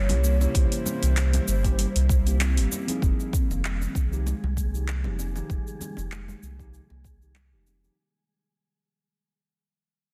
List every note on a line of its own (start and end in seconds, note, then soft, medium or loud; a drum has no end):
0.00 0.11 G1 medium
0.00 0.22 G3 loud
0.00 2.99 G3 medium
0.00 2.99 A#3 medium
0.00 2.98 E4 medium
0.00 0.57 C#5 loud
0.09 0.47 C2 medium
0.09 0.36 A#3 medium
0.09 0.37 C#4 medium
0.09 0.37 E4 medium
0.09 0.37 G4 medium
0.09 open hi-hat soft
0.09 muted conga medium
0.09 low conga loud
0.24 0.40 A#3 medium
0.24 high conga medium
0.24 cabasa medium
0.39 0.49 C3 medium
0.39 1.60 A#3 medium
0.39 1.60 C#4 medium
0.39 1.61 E4 medium
0.39 muted conga soft
0.39 cabasa soft
0.43 1.62 G4 loud
0.55 0.65 C2 medium
0.55 0.71 E3 medium
0.55 2.41 C5 loud
0.55 kick loud
0.55 open hi-hat medium
0.55 cabasa soft
0.72 1.01 A#3 medium
0.72 open hi-hat soft
0.72 cabasa soft
0.86 muted conga soft
0.86 high conga medium
0.86 low conga medium
0.86 cabasa medium
1.03 1.39 C2 medium
1.03 1.16 E3 medium
1.03 open hi-hat soft
1.03 cabasa soft
1.16 1.33 G3 medium
1.16 clap loud
1.16 open hi-hat medium
1.16 cabasa soft
1.33 open hi-hat medium
1.33 muted conga medium
1.33 high conga medium
1.33 low conga medium
1.33 cabasa soft
1.48 1.85 G1 medium
1.48 cabasa medium
1.64 1.86 A#3 loud
1.64 1.86 C#4 medium
1.64 1.86 E4 medium
1.64 1.87 G4 loud
1.64 kick medium
1.64 open hi-hat soft
1.64 muted conga soft
1.64 cabasa soft
1.78 1.94 G3 loud
1.78 open hi-hat medium
1.78 cabasa soft
1.95 2.59 C2 medium
1.95 open hi-hat medium
1.95 cabasa soft
2.09 2.25 G3 medium
2.09 kick loud
2.09 cabasa medium
2.26 2.84 A#3 medium
2.26 2.40 A#3 medium
2.26 2.85 E4 medium
2.26 2.85 G4 medium
2.26 open hi-hat soft
2.26 high conga soft
2.26 cabasa soft
2.40 2.50 C4 medium
2.40 clap loud
2.40 open hi-hat medium
2.40 low conga medium
2.40 cabasa soft
2.57 2.66 G1 medium
2.57 2.65 E4 medium
2.57 open hi-hat soft
2.72 high conga medium
2.72 cabasa medium
2.87 3.33 F3 medium
2.87 3.33 A#3 medium
2.87 3.01 C4 medium
2.87 3.33 D#4 medium
2.87 3.34 G#4 medium
2.87 open hi-hat soft
2.87 high conga soft
2.87 cabasa soft
3.02 3.13 F1 medium
3.02 3.18 F3 medium
3.02 7.99 G#3 medium
3.02 7.99 G#4 medium
3.02 kick loud
3.02 cabasa soft
3.19 3.49 A#3 medium
3.19 cabasa soft
3.33 kick medium
3.33 high conga medium
3.33 cabasa medium
3.50 3.87 F1 medium
3.50 3.63 D#3 medium
3.50 muted conga soft
3.50 cabasa soft
3.65 clap loud
3.65 cabasa soft
3.81 high conga medium
3.81 cabasa soft
3.95 4.33 C2 medium
3.95 kick loud
3.95 cabasa medium
4.11 4.33 F3 medium
4.11 4.33 A#3 medium
4.11 4.34 D#4 medium
4.11 4.34 G4 loud
4.11 cabasa soft
4.26 4.56 G#3 medium
4.26 muted conga medium
4.26 cabasa soft
4.43 5.06 C2 medium
4.43 low conga medium
4.57 4.73 A#3 medium
4.57 kick medium
4.57 cabasa medium
4.73 4.82 C3 medium
4.73 4.86 F3 medium
4.73 4.86 A#3 medium
4.73 4.87 D#4 medium
4.73 4.87 G4 medium
4.73 cabasa soft
4.88 5.04 F3 medium
4.88 clap loud
4.88 cabasa soft
5.04 5.41 F1 medium
5.04 5.31 F3 medium
5.04 5.32 A#3 medium
5.04 5.34 A#3 medium
5.04 5.32 D#4 medium
5.04 5.32 G4 medium
5.04 muted conga medium
5.04 low conga medium
5.19 high conga medium
5.19 cabasa medium
5.34 5.49 D#3 medium
5.34 6.54 F3 medium
5.34 6.55 A#3 medium
5.34 6.56 D#4 medium
5.34 muted conga medium
5.34 cabasa soft
5.38 6.56 G4 medium
5.50 5.60 F1 medium
5.50 5.66 G3 medium
5.50 kick loud
5.50 cabasa soft
5.67 cabasa soft
5.81 high conga medium
5.81 low conga medium
5.81 cabasa medium
5.97 6.34 F1 medium
5.97 muted conga medium
5.97 cabasa soft
6.12 6.41 G#3 medium
6.12 clap medium
6.12 cabasa soft
6.28 low conga medium
6.28 cabasa soft
6.43 6.80 C2 medium
6.43 6.59 A#3 medium
6.43 cabasa medium
6.58 6.67 C3 medium
6.58 6.80 F3 medium
6.58 6.81 A#3 medium
6.58 6.81 D#4 medium
6.58 6.81 G4 loud
6.58 kick medium
6.58 cabasa soft
6.73 6.89 F3 medium
6.73 cabasa soft
6.90 7.54 C2 medium
6.90 7.20 A#3 medium
6.90 muted conga soft
7.05 kick loud
7.05 cabasa medium
7.21 7.35 D#3 medium
7.21 7.34 F3 medium
7.21 7.34 A#3 medium
7.21 7.34 D#4 medium
7.21 7.35 G4 medium
7.21 cabasa soft
7.35 7.51 G3 medium
7.35 clap loud
7.35 low conga medium
7.35 cabasa soft
7.51 7.89 F1 medium
7.51 7.79 F3 medium
7.51 7.79 A#3 medium
7.51 7.79 D#4 medium
7.51 7.80 G4 medium
7.67 high conga medium
7.67 cabasa medium
7.82 7.95 F3 medium
7.82 7.95 A#3 medium
7.82 7.96 D#4 medium
7.82 7.96 G4 medium
7.82 high conga soft
7.82 cabasa soft